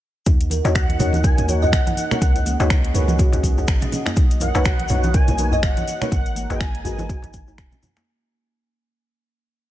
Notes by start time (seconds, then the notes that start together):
0.26 D#2 D#4 A#4 D#5 F#5, kick, closed hi-hat, muted conga, cabasa
0.41 closed hi-hat, cabasa
0.50 A#4, open hi-hat, high conga, cabasa
0.65 D#2 D#4 F#4 A#4 C#5, closed hi-hat, muted conga, djembe slap, djembe tone, cabasa
0.75 F#4 F#5, finger snap, kick, closed hi-hat, cabasa
0.89 closed hi-hat, high conga
0.99 D#2 C#4 D#4 F#4 A#4 C#5, open hi-hat, muted conga, djembe tone, low conga, djembe bass, cabasa
1.13 closed hi-hat, high conga, cabasa
1.23 A#4 G#5, kick, closed hi-hat, cabasa
1.38 D#2 A#3, closed hi-hat, muted conga, low conga, cabasa
1.48 D#4 F#4 A#4 C#5 F#5, open hi-hat, djembe tone, high conga, cabasa
1.62 D#5, djembe bass, cabasa
1.72 A#1, finger snap, kick, closed hi-hat, low conga, cabasa
1.87 D#4, closed hi-hat, muted conga, high conga, djembe tone, cabasa
1.97 F#5, open hi-hat, high conga, cabasa
2.11 A#3 D#4 F#4 A#4 C#5, finger snap, closed hi-hat, low conga, cabasa
2.21 C#2 C#4 G#4 A#4 D#5 F#5, kick, closed hi-hat, muted conga, cabasa
2.36 closed hi-hat, djembe tone, cabasa
2.46 A#3, open hi-hat, high conga, cabasa
2.60 C#2 D#4 F#4 B4 C#5, closed hi-hat, muted conga, djembe slap, cabasa
2.70 C#4, finger snap, kick, closed hi-hat, djembe tone, cabasa
2.85 closed hi-hat
2.94 C#2 D#4 F#4 A#4 B4 C#5, open hi-hat, muted conga, low conga, djembe bass, cabasa
3.08 closed hi-hat, high conga, cabasa
3.19 F#4, kick, closed hi-hat, djembe tone, cabasa
3.32 C#2 D#4, closed hi-hat, djembe slap, muted conga, cabasa
3.43 kick, open hi-hat, high conga, cabasa
3.58 D#4, djembe tone, cabasa
3.67 G#1, finger snap, kick, closed hi-hat, cabasa
3.81 C#4, closed hi-hat, muted conga, low conga, cabasa
3.92 open hi-hat, high conga, low conga, cabasa
4.06 A#3, finger snap, closed hi-hat, djembe slap, djembe tone, cabasa
4.16 B1 D#4 F#4 C#5, kick, closed hi-hat, muted conga, cabasa
4.31 closed hi-hat, cabasa
4.40 A#4 F#5, open hi-hat, high conga, djembe tone, cabasa
4.54 B1 D#4 A#4 B4 C#5, closed hi-hat, muted conga, djembe slap, cabasa
4.65 F#4, finger snap, kick, closed hi-hat, cabasa
4.79 closed hi-hat, high conga
4.88 B1 C#4 D#4 A#4 B4 C#5, open hi-hat, muted conga, djembe tone, low conga, djembe bass, cabasa
5.03 closed hi-hat, high conga, cabasa
5.14 A#4 G#5, kick, closed hi-hat, cabasa
5.28 B1 A#3, closed hi-hat, muted conga, djembe tone, low conga, cabasa
5.38 D#4 A#4 B4 C#5, open hi-hat, high conga, cabasa
5.52 D#5, djembe bass, cabasa
5.63 F#1 F#5, finger snap, kick, closed hi-hat, low conga, cabasa
5.77 D#4, closed hi-hat, muted conga, djembe tone, high conga, cabasa
5.87 open hi-hat, high conga, cabasa
6.01 A#3 D#4 A#4 B4 C#5, finger snap, closed hi-hat, low conga, cabasa
6.11 G#1 G#3 D#4 A#4 F#5 A#5, kick, closed hi-hat, muted conga, djembe tone, cabasa
6.26 closed hi-hat, cabasa
6.35 A#3, open hi-hat, high conga, cabasa
6.50 G#1 F#4 G#4 B4 D#5 G#5, closed hi-hat, djembe slap, muted conga, cabasa
6.60 finger snap, kick, closed hi-hat, djembe tone, cabasa
6.75 closed hi-hat
6.84 G#1 F#4 G#4 A#4 B4 D#5, open hi-hat, muted conga, djembe bass, low conga, cabasa
6.98 closed hi-hat, high conga, djembe tone, cabasa
7.09 F#4, kick, closed hi-hat, cabasa
7.22 G#1 D#4, closed hi-hat, djembe slap, muted conga, cabasa
7.33 kick, open hi-hat, high conga, cabasa
7.48 D#4, djembe tone, cabasa
7.58 D#1, finger snap, kick, closed hi-hat, cabasa
7.72 C#4, closed hi-hat, muted conga, low conga, cabasa
7.82 open hi-hat, high conga, djembe tone, low conga, cabasa
7.96 A#3, finger snap, closed hi-hat, djembe slap, cabasa